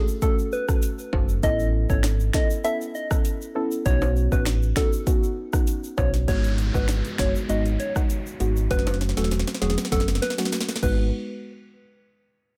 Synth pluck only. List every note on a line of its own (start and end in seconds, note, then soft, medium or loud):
0.22 0.38 A3 loud
0.22 0.38 C#4 medium
0.22 0.39 F#4 medium
0.22 0.39 A4 loud
0.68 0.83 A3 medium
0.68 0.83 C#4 medium
0.68 0.83 F#4 medium
0.68 0.83 A4 medium
1.13 1.29 A3 medium
1.13 1.29 C#4 medium
1.13 1.29 F#4 medium
1.13 1.29 A4 medium
1.43 1.86 B3 loud
1.43 1.86 C#4 medium
1.43 1.86 E4 medium
1.43 1.86 A4 loud
1.89 2.04 B3 medium
1.89 2.04 C#4 medium
1.89 2.04 E4 medium
1.89 2.04 A4 medium
2.34 2.50 B3 medium
2.34 2.51 C#4 medium
2.34 2.51 E4 medium
2.34 2.51 A4 medium
2.64 2.81 B3 loud
2.64 2.81 C#4 medium
2.64 2.81 E4 medium
2.64 2.81 A4 loud
3.10 3.25 B3 medium
3.10 3.25 C#4 medium
3.10 3.25 E4 medium
3.10 3.25 A4 medium
3.55 3.72 B3 medium
3.55 3.72 C#4 medium
3.55 3.72 E4 medium
3.55 3.72 A4 medium
3.85 4.28 B3 loud
3.85 4.28 C#4 medium
3.85 4.28 D#4 medium
3.85 4.28 F#4 loud
4.32 4.47 B3 medium
4.32 4.47 C#4 medium
4.32 4.47 D#4 medium
4.32 4.47 F#4 medium
4.76 4.93 B3 medium
4.76 4.93 C#4 medium
4.76 4.93 D#4 medium
4.76 4.93 F#4 medium
5.06 5.23 B3 loud
5.06 5.23 C#4 medium
5.06 5.23 D#4 medium
5.06 5.23 F#4 loud
5.53 5.68 B3 medium
5.53 5.68 C#4 medium
5.53 5.68 D#4 medium
5.53 5.68 F#4 medium
5.97 6.14 B3 medium
5.97 6.14 C#4 medium
5.97 6.14 D#4 medium
5.97 6.14 F#4 medium
6.28 6.70 G#3 medium
6.28 6.71 B3 medium
6.28 6.71 D#4 medium
6.28 6.71 F#4 loud
6.74 6.89 G#3 medium
6.74 6.89 B3 medium
6.74 6.89 D#4 medium
6.74 6.89 F#4 medium
7.19 7.35 G#3 medium
7.19 7.35 B3 medium
7.19 7.35 D#4 medium
7.19 7.35 F#4 medium
7.49 7.65 G#3 loud
7.49 7.66 B3 medium
7.49 7.66 D#4 medium
7.49 7.66 F#4 loud
7.95 8.10 G#3 medium
7.95 8.10 B3 medium
7.95 8.10 D#4 medium
7.95 8.10 F#4 medium
8.40 8.56 G#3 medium
8.40 8.56 B3 medium
8.40 8.57 D#4 medium
8.40 8.57 F#4 medium
8.70 9.13 F#3 medium
8.70 9.13 A3 medium
8.70 9.13 C#4 medium
8.70 9.13 F#4 loud
9.17 9.31 F#3 medium
9.17 9.31 A3 medium
9.17 9.32 C#4 medium
9.17 9.32 F#4 medium
9.61 9.78 F#3 medium
9.61 9.78 A3 medium
9.61 9.78 C#4 medium
9.61 9.78 F#4 medium
9.91 10.08 F#3 medium
9.91 10.08 A3 medium
9.91 10.08 C#4 medium
9.91 10.08 F#4 loud
10.38 10.53 F#3 medium
10.38 10.53 A3 medium
10.38 10.53 C#4 medium
10.38 10.53 F#4 medium
10.82 11.05 G#3 medium
10.82 11.06 B3 medium
10.82 11.06 D#4 medium
10.82 11.06 F#4 loud